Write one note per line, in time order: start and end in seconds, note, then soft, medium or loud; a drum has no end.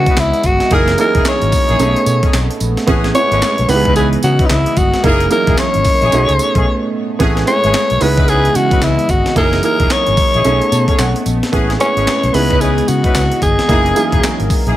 0.00 0.70 C#3 medium
0.00 0.70 E3 medium
0.00 0.70 G#3 medium
0.00 0.24 B3 medium
0.00 0.70 B3 medium
0.00 0.24 D#4 medium
0.00 0.24 E4 medium
0.00 0.21 F#4 medium
0.00 0.24 G#4 medium
0.00 2.84 D#5 medium
0.06 0.23 C#4 medium
0.06 0.23 D#4 medium
0.06 0.23 E4 medium
0.06 0.23 B4 medium
0.06 kick loud
0.06 closed hi-hat medium
0.17 0.31 C#2 medium
0.17 0.47 E4 loud
0.17 snare loud
0.17 clap medium
0.17 closed hi-hat medium
0.17 tambourine medium
0.33 closed hi-hat medium
0.43 0.58 G1 medium
0.43 0.75 F#4 medium
0.43 kick medium
0.43 closed hi-hat medium
0.43 tambourine medium
0.60 snare medium
0.60 closed hi-hat medium
0.71 0.94 F#1 loud
0.71 1.78 E3 medium
0.71 1.78 F#3 medium
0.71 0.92 A#3 medium
0.71 0.90 A#3 medium
0.71 1.78 C#4 medium
0.71 0.92 D#4 medium
0.71 0.91 D#4 medium
0.71 0.92 E4 medium
0.71 0.91 E4 medium
0.71 1.78 G#4 medium
0.71 0.92 G#4 loud
0.71 0.91 G#4 medium
0.71 1.78 A#4 medium
0.71 1.00 A#4 loud
0.71 kick loud
0.71 closed hi-hat medium
0.88 snare medium
0.88 closed hi-hat medium
0.98 1.69 A#3 medium
0.98 1.69 D#4 medium
0.98 1.70 E4 medium
0.98 1.70 G#4 medium
0.98 1.25 A#4 medium
0.98 closed hi-hat medium
0.98 tambourine medium
1.14 1.24 E1 medium
1.14 1.31 A#3 medium
1.14 1.31 D#4 medium
1.14 1.31 E4 medium
1.14 1.32 G#4 medium
1.14 kick medium
1.14 closed hi-hat medium
1.25 2.58 C#5 medium
1.25 muted fingered electric bass stroke medium
1.25 snare loud
1.25 clap medium
1.25 closed hi-hat medium
1.25 tambourine medium
1.42 1.51 G#1 medium
1.42 closed hi-hat medium
1.52 kick medium
1.52 open hi-hat medium
1.52 tambourine medium
1.69 1.78 A#1 medium
1.69 1.85 A#3 medium
1.69 1.78 D#4 medium
1.69 1.86 E4 medium
1.69 1.78 G#4 medium
1.69 closed hi-hat soft
1.79 1.94 B1 loud
1.79 2.67 A3 medium
1.79 2.00 A3 medium
1.79 3.67 A3 medium
1.79 2.87 B3 medium
1.79 2.00 C#4 medium
1.79 2.67 C#4 medium
1.79 2.00 D#4 medium
1.79 2.67 D#4 medium
1.79 2.00 G#4 medium
1.79 2.68 G#4 medium
1.79 closed hi-hat medium
1.79 tambourine medium
1.96 closed hi-hat soft
2.06 2.20 B2 loud
2.06 closed hi-hat medium
2.06 tambourine medium
2.23 2.40 A3 medium
2.23 2.40 C#4 medium
2.23 2.40 D#4 medium
2.23 2.40 G#4 medium
2.23 kick loud
2.23 closed hi-hat medium
2.33 2.48 B1 medium
2.33 snare loud
2.33 clap medium
2.33 closed hi-hat medium
2.33 tambourine medium
2.51 closed hi-hat medium
2.60 2.75 A#1 medium
2.60 closed hi-hat medium
2.60 tambourine medium
2.77 snare medium
2.77 closed hi-hat medium
2.87 3.11 A1 loud
2.87 5.02 G#3 medium
2.87 3.08 A3 medium
2.87 3.06 B3 loud
2.87 3.08 B3 medium
2.87 3.07 C#4 medium
2.87 3.08 C#4 medium
2.87 3.68 C#4 medium
2.87 3.07 E4 medium
2.87 3.08 G#4 loud
2.87 3.07 G#4 loud
2.87 kick loud
2.87 closed hi-hat medium
3.04 snare medium
3.04 closed hi-hat medium
3.14 3.67 B3 medium
3.14 3.69 C#4 medium
3.14 3.68 E4 medium
3.14 3.69 G#4 medium
3.14 3.71 C#5 loud
3.14 closed hi-hat medium
3.14 tambourine medium
3.31 3.40 G#1 loud
3.31 3.48 A3 medium
3.31 3.48 B3 medium
3.31 3.48 C#4 medium
3.31 3.48 G#4 medium
3.31 closed hi-hat medium
3.42 muted fingered electric bass stroke medium
3.42 snare loud
3.42 clap medium
3.42 closed hi-hat medium
3.42 tambourine medium
3.58 3.67 B1 medium
3.58 closed hi-hat medium
3.68 4.15 C#2 loud
3.68 5.03 C#3 medium
3.68 6.10 E3 medium
3.68 4.56 B3 medium
3.68 5.03 B3 medium
3.68 4.56 D#4 medium
3.68 4.57 E4 medium
3.68 3.77 G4 medium
3.68 3.95 B4 loud
3.68 7.17 D#5 medium
3.68 open hi-hat medium
3.68 tambourine medium
3.76 4.60 G#4 loud
3.85 3.94 C#4 medium
3.85 3.95 D#4 medium
3.85 3.95 E4 medium
3.85 3.95 B4 medium
3.85 kick medium
3.85 closed hi-hat soft
3.96 4.16 C#4 medium
3.96 4.16 D#4 medium
3.96 4.16 E4 medium
3.96 4.08 G#4 loud
3.96 4.16 B4 medium
3.96 closed hi-hat medium
3.96 tambourine medium
4.13 closed hi-hat medium
4.23 4.37 C#3 loud
4.23 4.47 F#4 medium
4.23 closed hi-hat medium
4.23 tambourine medium
4.39 4.56 C#4 medium
4.39 4.56 D#4 medium
4.39 4.56 E4 medium
4.39 4.56 B4 medium
4.39 kick loud
4.39 closed hi-hat medium
4.45 4.52 D#4 medium
4.50 4.64 C#2 medium
4.50 4.79 E4 loud
4.50 snare loud
4.50 clap medium
4.50 closed hi-hat medium
4.50 tambourine medium
4.66 closed hi-hat medium
4.77 4.91 G1 loud
4.77 5.06 F#4 medium
4.77 kick loud
4.77 closed hi-hat medium
4.77 tambourine medium
4.94 snare medium
4.94 closed hi-hat medium
5.03 5.27 F#1 loud
5.03 6.11 F#3 medium
5.03 5.23 A#3 medium
5.03 5.24 A#3 medium
5.03 6.11 C#4 medium
5.03 5.23 D#4 medium
5.03 5.24 D#4 medium
5.03 5.23 E4 medium
5.03 5.24 E4 medium
5.03 5.23 G#4 medium
5.03 5.25 G#4 loud
5.03 6.11 G#4 medium
5.03 5.31 A#4 loud
5.03 6.11 A#4 medium
5.03 kick loud
5.03 closed hi-hat medium
5.20 closed hi-hat medium
5.30 6.01 A#3 medium
5.30 6.02 D#4 medium
5.30 6.02 E4 medium
5.30 6.02 G#4 medium
5.30 5.60 A#4 medium
5.30 closed hi-hat medium
5.30 tambourine medium
5.47 5.56 E1 loud
5.47 5.64 A#3 medium
5.47 5.64 D#4 medium
5.47 5.64 E4 medium
5.47 5.64 G#4 medium
5.47 kick loud
5.47 closed hi-hat medium
5.57 6.93 C#5 loud
5.57 muted fingered electric bass stroke soft
5.57 snare loud
5.57 clap medium
5.57 closed hi-hat medium
5.57 tambourine loud
5.74 5.84 G#1 medium
5.74 closed hi-hat medium
5.85 kick loud
5.85 open hi-hat medium
5.85 tambourine medium
6.01 6.11 A#1 medium
6.01 6.18 A#3 medium
6.01 6.11 D#4 medium
6.01 6.18 E4 medium
6.01 6.11 G#4 medium
6.01 closed hi-hat soft
6.11 6.26 B1 medium
6.11 6.99 A3 medium
6.11 6.32 A3 medium
6.11 7.99 A3 medium
6.11 7.19 B3 medium
6.11 7.00 C#4 medium
6.11 6.32 C#4 medium
6.11 7.00 D#4 medium
6.11 6.32 D#4 medium
6.11 6.20 F#4 medium
6.11 6.33 G#4 medium
6.11 closed hi-hat medium
6.11 tambourine medium
6.19 7.03 G#4 medium
6.29 6.38 C#2 medium
6.29 closed hi-hat soft
6.39 closed hi-hat medium
6.39 tambourine medium
6.55 6.64 B1 medium
6.55 6.66 A3 medium
6.55 6.66 C#4 medium
6.55 6.66 D#4 medium
6.55 6.66 G#4 medium
6.55 kick loud
6.55 closed hi-hat medium
7.19 7.43 A1 loud
7.19 8.00 G#3 medium
7.19 7.40 A3 medium
7.19 7.39 B3 loud
7.19 7.40 B3 medium
7.19 7.39 C#4 medium
7.19 7.40 C#4 medium
7.19 8.00 C#4 medium
7.19 7.39 E4 medium
7.19 7.41 G#4 loud
7.19 7.40 G#4 loud
7.19 kick loud
7.19 closed hi-hat medium
7.37 snare medium
7.37 closed hi-hat medium
7.46 7.99 B3 medium
7.46 8.01 C#4 medium
7.46 7.99 E4 medium
7.46 8.00 G#4 medium
7.46 8.03 C#5 loud
7.46 closed hi-hat medium
7.46 tambourine medium
7.63 7.73 G#1 loud
7.63 7.80 A3 medium
7.63 7.80 B3 medium
7.63 7.80 C#4 medium
7.63 7.80 G#4 medium
7.63 closed hi-hat medium
7.74 muted fingered electric bass stroke medium
7.74 snare loud
7.74 clap medium
7.74 closed hi-hat medium
7.74 tambourine medium
7.90 8.00 B1 medium
7.90 closed hi-hat medium
8.00 8.47 C#2 loud
8.00 9.35 C#3 medium
8.00 10.42 E3 medium
8.00 9.35 G#3 medium
8.00 8.88 B3 medium
8.00 9.35 B3 medium
8.00 8.89 D#4 medium
8.00 8.89 E4 medium
8.00 8.89 G#4 medium
8.00 8.30 B4 medium
8.00 11.49 D#5 medium
8.00 open hi-hat medium
8.00 tambourine medium
8.17 8.26 C#4 medium
8.17 8.27 D#4 medium
8.17 8.27 E4 medium
8.17 8.27 B4 medium
8.17 kick loud
8.17 closed hi-hat soft
8.28 8.48 C#4 medium
8.28 8.48 D#4 medium
8.28 8.49 E4 medium
8.28 8.58 G#4 loud
8.28 8.49 B4 medium
8.28 closed hi-hat medium
8.28 tambourine medium
8.45 closed hi-hat medium
8.55 8.69 C#3 loud
8.55 8.85 F#4 medium
8.55 closed hi-hat medium
8.55 tambourine medium
8.71 8.88 C#4 medium
8.71 8.88 D#4 medium
8.71 8.88 E4 medium
8.71 8.88 B4 medium
8.71 kick loud
8.71 closed hi-hat medium
8.82 8.96 C#2 medium
8.82 9.12 E4 medium
8.82 snare loud
8.82 clap medium
8.82 closed hi-hat medium
8.82 tambourine medium
8.99 closed hi-hat medium
9.09 9.23 G1 medium
9.09 9.37 F#4 medium
9.09 kick loud
9.09 closed hi-hat medium
9.09 tambourine medium
9.26 snare medium
9.26 closed hi-hat medium
9.35 9.59 F#1 loud
9.35 10.43 F#3 medium
9.35 9.55 A#3 medium
9.35 9.57 A#3 medium
9.35 10.43 C#4 medium
9.35 9.55 D#4 medium
9.35 9.57 D#4 medium
9.35 9.56 E4 medium
9.35 9.57 E4 medium
9.35 10.43 G#4 medium
9.35 9.57 G#4 loud
9.35 9.56 G#4 medium
9.35 10.43 A#4 medium
9.35 9.62 A#4 loud
9.35 kick loud
9.35 closed hi-hat medium
9.53 snare medium
9.53 closed hi-hat medium
9.63 10.34 A#3 medium
9.63 10.34 D#4 medium
9.63 10.34 E4 medium
9.63 10.35 G#4 medium
9.63 9.93 A#4 medium
9.63 closed hi-hat medium
9.63 tambourine medium
9.80 9.89 E1 loud
9.80 9.96 A#3 medium
9.80 9.97 D#4 medium
9.80 9.97 E4 medium
9.80 9.97 G#4 medium
9.80 kick medium
9.80 closed hi-hat medium
9.90 11.26 C#5 loud
9.90 muted fingered electric bass stroke soft
9.90 snare loud
9.90 clap medium
9.90 closed hi-hat medium
9.90 tambourine medium
10.06 10.16 G#1 medium
10.06 closed hi-hat medium
10.17 kick loud
10.17 open hi-hat medium
10.17 tambourine medium
10.34 10.43 A#1 medium
10.34 10.51 A#3 medium
10.34 10.44 D#4 medium
10.34 10.51 E4 medium
10.34 10.44 G#4 medium
10.34 closed hi-hat soft
10.44 10.59 B1 loud
10.44 11.32 A3 medium
10.44 12.32 A3 medium
10.44 10.65 A3 medium
10.44 11.52 B3 medium
10.44 11.32 C#4 medium
10.44 10.65 C#4 medium
10.44 11.32 D#4 medium
10.44 10.65 D#4 medium
10.44 10.65 G#4 medium
10.44 11.33 G#4 medium
10.44 closed hi-hat medium
10.44 tambourine medium
10.62 closed hi-hat soft
10.71 10.86 B2 loud
10.71 10.97 A5 medium
10.71 closed hi-hat medium
10.71 tambourine medium
10.88 11.05 A3 medium
10.88 11.05 C#4 medium
10.88 11.05 D#4 medium
10.88 11.05 G#4 medium
10.88 kick medium
10.88 closed hi-hat medium
10.99 11.13 B1 loud
10.99 11.49 F#5 medium
10.99 snare loud
10.99 clap medium
10.99 closed hi-hat medium
10.99 tambourine medium
11.16 closed hi-hat medium
11.26 11.40 A#1 medium
11.26 closed hi-hat medium
11.26 tambourine medium
11.43 snare medium
11.43 closed hi-hat medium
11.52 11.76 A1 loud
11.52 13.67 G#3 medium
11.52 11.73 A3 medium
11.52 11.72 B3 medium
11.52 11.73 B3 medium
11.52 11.73 C#4 medium
11.52 11.72 C#4 medium
11.52 12.33 C#4 medium
11.52 11.72 E4 medium
11.52 11.73 G#4 loud
11.52 11.72 G#4 loud
11.52 kick loud
11.52 closed hi-hat medium
11.70 snare medium
11.70 closed hi-hat medium
11.79 12.31 B3 medium
11.79 12.34 C#4 medium
11.79 12.32 E4 medium
11.79 12.33 G#4 medium
11.79 12.36 C#5 loud
11.79 closed hi-hat medium
11.79 tambourine medium
11.96 12.05 G#1 medium
11.96 12.13 A3 medium
11.96 12.13 B3 medium
11.96 12.13 C#4 medium
11.96 12.13 G#4 medium
11.96 closed hi-hat medium
12.07 muted fingered electric bass stroke soft
12.07 snare loud
12.07 clap medium
12.07 closed hi-hat medium
12.07 tambourine medium
12.23 12.32 B1 medium
12.23 closed hi-hat medium
12.33 12.80 C#2 loud
12.33 13.67 C#3 medium
12.33 14.74 E3 medium
12.33 13.21 B3 medium
12.33 13.67 B3 medium
12.33 13.21 D#4 medium
12.33 13.21 E4 medium
12.33 13.22 G#4 medium
12.33 12.62 B4 loud
12.33 14.77 D#5 medium
12.33 open hi-hat medium
12.33 tambourine medium
12.50 12.59 C#4 medium
12.50 12.60 D#4 medium
12.50 12.60 E4 medium
12.50 12.60 B4 medium
12.50 kick medium
12.50 closed hi-hat soft
12.60 12.81 C#4 medium
12.60 12.81 D#4 medium
12.60 12.81 E4 medium
12.60 12.90 G#4 loud
12.60 12.81 B4 medium
12.60 closed hi-hat medium
12.60 tambourine medium
12.78 closed hi-hat soft
12.88 13.02 C#3 loud
12.88 13.42 F#4 medium
12.88 closed hi-hat medium
12.88 tambourine medium
13.04 13.21 C#4 medium
13.04 13.21 D#4 medium
13.04 13.21 E4 medium
13.04 13.21 B4 medium
13.04 kick loud
13.04 closed hi-hat medium
13.15 13.29 C#2 medium
13.15 snare loud
13.15 clap medium
13.15 closed hi-hat medium
13.15 tambourine loud
13.32 closed hi-hat medium
13.42 13.56 G1 loud
13.42 14.46 G#4 medium
13.42 kick medium
13.42 closed hi-hat medium
13.42 tambourine medium
13.59 snare medium
13.59 closed hi-hat medium
13.68 13.92 F#1 loud
13.68 14.76 F#3 medium
13.68 13.88 A#3 medium
13.68 13.89 A#3 medium
13.68 14.76 C#4 medium
13.68 13.89 D#4 medium
13.68 13.88 D#4 medium
13.68 13.89 E4 medium
13.68 13.88 E4 medium
13.68 13.89 G#4 loud
13.68 13.88 G#4 medium
13.68 14.76 G#4 medium
13.68 14.76 A#4 medium
13.68 kick loud
13.68 closed hi-hat medium
13.86 closed hi-hat medium
13.95 14.66 A#3 medium
13.95 14.66 D#4 medium
13.95 14.67 E4 medium
13.95 14.67 G#4 medium
13.95 closed hi-hat medium
13.95 tambourine medium
14.12 14.21 E1 medium
14.12 14.29 A#3 medium
14.12 14.29 D#4 medium
14.12 14.29 E4 medium
14.12 14.29 G#4 medium
14.12 kick loud
14.12 closed hi-hat medium
14.23 muted fingered electric bass stroke soft
14.23 snare loud
14.23 clap medium
14.23 closed hi-hat medium
14.23 tambourine medium
14.40 14.48 G#1 medium
14.40 closed hi-hat medium
14.50 kick loud
14.50 open hi-hat medium
14.50 tambourine medium
14.66 14.75 A#1 medium
14.66 14.77 A#3 medium
14.66 14.76 D#4 medium
14.66 14.77 E4 medium
14.66 14.76 G#4 medium
14.66 closed hi-hat soft